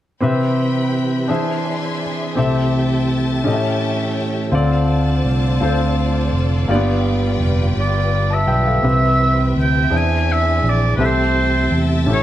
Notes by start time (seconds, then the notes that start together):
0.21 C3 E3 C4 G4 B4 E5 G5 B5
1.28 E3 D4 G#4 C5 D5 E5 G#5 C6
2.35 C2 C3 A3 C4 G4 A4 C5 E5 G5 A5
3.44 A2 E3 C#4 G4 A4 C#5 D#5 E5 G5
3.53 E5
4.51 D2 D3 A3 C4 F4 A4 C5 D5 A5
4.55 D5
5.25 C2
5.60 D2 C4 F4 A4 C5
6.32 F1
6.68 G1 G2 G3 A#3 B3 F4 G4 B4 D5 G5
6.75 B3
7.40 F1
7.77 G1 D5
8.30 E5 A5
8.47 B1 B4 G5
8.51 E5
8.66 A4 F5
8.82 C2 C3 E3 C4 G4 B4 E5 G5
9.55 D2
9.61 G5
9.90 E2 E3 C4 D4 G#4 C5 D5 E5 G#5
9.97 G#5
10.32 E5
10.63 A#1
10.69 D5
10.96 C2 C3 C4 G4 A4 B4 E5 G5 A5
11.00 A3 C4 E5
11.05 C5
11.71 E2
12.06 A1 A2 C#4 G4 A4 C#5 E5 G5
12.13 C#5